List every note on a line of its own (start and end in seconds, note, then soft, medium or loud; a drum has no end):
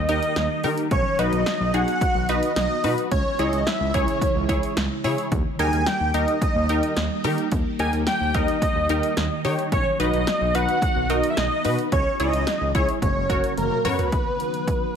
0.00 3.08 D#3 medium
0.00 0.87 G3 medium
0.00 0.87 A#3 medium
0.00 0.87 G4 medium
0.09 0.20 D#2 loud
0.09 0.33 D#4 medium
0.09 0.33 G4 medium
0.09 0.33 A#4 medium
0.09 0.60 D#5 medium
0.09 closed hi-hat medium
0.23 closed hi-hat medium
0.36 0.47 D#2 loud
0.36 snare loud
0.36 closed hi-hat medium
0.64 0.75 D#3 loud
0.64 0.88 D#4 medium
0.64 0.88 G4 medium
0.64 0.88 A#4 medium
0.64 open hi-hat medium
0.78 closed hi-hat medium
0.91 1.02 B1 loud
0.91 3.09 F#3 medium
0.91 3.10 B3 medium
0.91 3.09 F#4 medium
0.91 1.21 C#5 loud
0.91 kick loud
0.91 closed hi-hat medium
1.19 1.30 B1 loud
1.19 1.43 D#4 medium
1.19 1.43 F#4 medium
1.19 1.43 B4 medium
1.19 1.76 D#5 loud
1.19 closed hi-hat medium
1.33 1.44 B1 medium
1.33 closed hi-hat medium
1.46 snare loud
1.46 closed hi-hat medium
1.60 1.71 B1 loud
1.74 1.85 B1 loud
1.74 1.98 D#4 medium
1.74 1.98 F#4 medium
1.74 1.98 G#4 medium
1.74 2.31 F#5 loud
1.74 closed hi-hat medium
1.88 closed hi-hat soft
2.01 kick loud
2.01 closed hi-hat medium
2.15 2.26 B1 loud
2.29 2.40 B1 loud
2.29 2.53 D#4 medium
2.29 2.53 F#4 medium
2.29 2.53 B4 medium
2.29 2.56 D#5 loud
2.29 closed hi-hat medium
2.43 closed hi-hat medium
2.56 2.67 B1 loud
2.56 2.95 D#5 loud
2.56 snare loud
2.56 closed hi-hat medium
2.84 2.95 B2 loud
2.84 3.08 D#4 medium
2.84 3.08 F#4 medium
2.84 3.08 B4 medium
2.84 open hi-hat medium
2.98 closed hi-hat medium
3.11 3.23 C#2 loud
3.11 5.29 C#3 medium
3.11 5.29 E3 medium
3.11 5.29 G#3 medium
3.11 5.30 E4 medium
3.11 3.41 C#5 loud
3.11 kick loud
3.11 closed hi-hat medium
3.39 3.50 C#2 loud
3.39 3.63 E4 medium
3.39 3.63 G#4 medium
3.39 3.63 C#5 medium
3.39 3.68 D#5 medium
3.39 closed hi-hat medium
3.53 3.64 C#2 loud
3.53 closed hi-hat medium
3.66 3.96 E5 loud
3.66 snare loud
3.66 closed hi-hat medium
3.80 3.91 C#2 loud
3.94 4.05 C#2 loud
3.94 4.18 E4 medium
3.94 4.18 G#4 medium
3.94 4.77 C#5 medium
3.94 4.18 C#5 medium
3.94 kick loud
3.94 closed hi-hat medium
4.08 closed hi-hat soft
4.21 kick loud
4.21 closed hi-hat medium
4.35 4.47 C#2 loud
4.49 4.60 C#2 loud
4.49 4.73 E4 medium
4.49 4.73 G#4 medium
4.49 4.73 C#5 medium
4.49 kick medium
4.49 closed hi-hat medium
4.63 closed hi-hat medium
4.77 4.88 C#2 loud
4.77 snare loud
4.77 closed hi-hat medium
5.04 5.15 C#3 loud
5.04 5.28 E4 medium
5.04 5.28 G#4 medium
5.04 5.28 C#5 loud
5.04 open hi-hat medium
5.18 closed hi-hat medium
5.32 5.43 D#2 loud
5.32 11.88 D#3 medium
5.32 9.68 G3 medium
5.32 9.68 A#3 medium
5.32 9.68 G4 medium
5.32 kick loud
5.32 closed hi-hat medium
5.59 5.70 D#2 loud
5.59 5.83 D#4 medium
5.59 5.83 G4 medium
5.59 5.83 A#4 medium
5.59 5.88 G#5 loud
5.59 closed hi-hat medium
5.73 5.84 D#2 loud
5.73 closed hi-hat medium
5.86 6.16 G5 loud
5.86 snare loud
5.86 closed hi-hat medium
6.00 6.11 D#2 medium
6.14 6.25 D#2 loud
6.14 6.38 D#4 medium
6.14 6.38 G4 medium
6.14 6.38 A#4 medium
6.14 6.41 D#5 medium
6.14 closed hi-hat medium
6.28 closed hi-hat soft
6.42 7.20 D#5 medium
6.42 kick medium
6.42 closed hi-hat medium
6.55 6.67 D#2 loud
6.69 6.80 D#2 loud
6.69 6.93 D#4 medium
6.69 6.93 G4 medium
6.69 6.93 A#4 medium
6.69 closed hi-hat medium
6.83 closed hi-hat medium
6.97 7.08 D#2 loud
6.97 snare loud
6.97 closed hi-hat medium
7.24 7.35 D#3 loud
7.24 7.48 D#4 medium
7.24 7.48 G4 medium
7.24 7.48 A#4 loud
7.24 open hi-hat medium
7.38 closed hi-hat medium
7.52 7.63 D#2 loud
7.52 kick loud
7.52 closed hi-hat medium
7.79 7.90 D#2 loud
7.79 8.03 D#4 medium
7.79 8.03 G4 medium
7.79 8.03 A#4 medium
7.79 7.92 G#5 loud
7.79 closed hi-hat medium
7.93 8.04 D#2 loud
7.93 closed hi-hat medium
8.07 8.36 G5 loud
8.07 snare loud
8.07 closed hi-hat medium
8.21 8.32 D#2 loud
8.34 8.46 D#2 loud
8.34 8.58 D#4 medium
8.34 8.58 G4 medium
8.34 8.58 A#4 medium
8.34 8.62 D#5 medium
8.34 kick loud
8.34 closed hi-hat medium
8.48 closed hi-hat soft
8.62 9.41 D#5 medium
8.62 kick medium
8.62 closed hi-hat medium
8.76 8.87 D#2 medium
8.89 9.01 D#2 loud
8.89 9.13 D#4 medium
8.89 9.13 G4 medium
8.89 9.13 A#4 medium
8.89 closed hi-hat medium
9.03 closed hi-hat medium
9.17 9.28 D#2 loud
9.17 snare loud
9.17 closed hi-hat medium
9.44 9.56 D#3 loud
9.44 9.68 D#4 medium
9.44 9.68 G4 medium
9.44 9.68 C#5 loud
9.44 open hi-hat medium
9.59 closed hi-hat medium
9.72 9.83 B1 loud
9.72 11.90 F#3 medium
9.72 11.90 B3 medium
9.72 11.90 F#4 medium
9.72 9.98 C#5 loud
9.72 kick loud
9.72 closed hi-hat medium
10.00 10.11 B1 loud
10.00 10.23 D#4 medium
10.00 10.23 F#4 medium
10.00 10.23 B4 medium
10.00 10.57 D#5 loud
10.00 closed hi-hat medium
10.13 10.24 B1 medium
10.13 closed hi-hat medium
10.27 snare loud
10.27 closed hi-hat medium
10.41 10.52 B1 loud
10.55 10.66 B1 loud
10.55 10.78 D#4 medium
10.55 10.78 F#4 medium
10.55 10.78 B4 medium
10.55 11.12 F#5 loud
10.55 closed hi-hat medium
10.69 closed hi-hat soft
10.82 kick loud
10.82 closed hi-hat medium
10.96 11.07 B1 loud
11.10 11.21 B1 loud
11.10 11.33 D#4 medium
11.10 11.33 F#4 medium
11.10 11.33 A#4 medium
11.10 11.30 D#5 loud
11.10 closed hi-hat medium
11.24 closed hi-hat medium
11.30 11.39 E5 medium
11.37 11.48 B1 loud
11.37 11.79 D#5 loud
11.37 snare loud
11.37 closed hi-hat medium
11.65 11.76 B2 loud
11.65 11.88 D#4 medium
11.65 11.88 F#4 medium
11.65 11.88 B4 medium
11.65 open hi-hat medium
11.79 closed hi-hat medium
11.92 12.03 C#2 loud
11.92 14.10 C#3 medium
11.92 13.01 E3 medium
11.92 13.01 G#3 medium
11.92 13.01 E4 medium
11.92 12.18 C#5 loud
11.92 kick loud
11.92 closed hi-hat medium
12.20 12.31 C#2 loud
12.20 12.43 E4 medium
12.20 12.43 G#4 medium
12.20 12.43 C#5 medium
12.20 12.71 D#5 loud
12.20 closed hi-hat medium
12.33 12.45 C#2 loud
12.33 closed hi-hat medium
12.47 snare loud
12.47 closed hi-hat medium
12.61 12.72 C#2 medium
12.75 12.86 C#2 loud
12.75 12.99 E4 medium
12.75 12.98 G#4 medium
12.75 12.99 C#5 medium
12.75 12.88 C#5 medium
12.75 kick loud
12.75 closed hi-hat medium
12.89 closed hi-hat soft
13.02 13.13 F#1 loud
13.02 14.11 F#3 medium
13.02 14.11 A#3 medium
13.02 14.11 F#4 medium
13.02 13.54 C#5 medium
13.02 kick medium
13.02 closed hi-hat medium
13.16 13.27 F#1 loud
13.30 13.41 F#1 loud
13.30 13.54 F#4 medium
13.30 13.54 A#4 medium
13.30 13.54 C#5 medium
13.30 kick medium
13.30 closed hi-hat medium
13.44 closed hi-hat medium
13.57 13.68 F#1 loud
13.57 13.87 A#4 medium
13.57 closed hi-hat medium
13.57 high tom medium
13.71 mid tom medium
13.85 13.96 F#2 loud
13.85 14.09 F#4 medium
13.85 14.09 A#4 medium
13.85 14.95 B4 medium
13.85 14.09 C#5 loud
13.85 mid tom medium
13.85 open hi-hat medium
13.99 closed hi-hat medium
13.99 floor tom loud
14.12 14.96 D#3 medium
14.12 14.96 F#3 medium
14.12 14.96 B3 medium
14.12 14.96 F#4 medium
14.12 kick loud
14.12 closed hi-hat medium
14.40 closed hi-hat medium
14.54 closed hi-hat soft
14.68 kick loud
14.68 closed hi-hat medium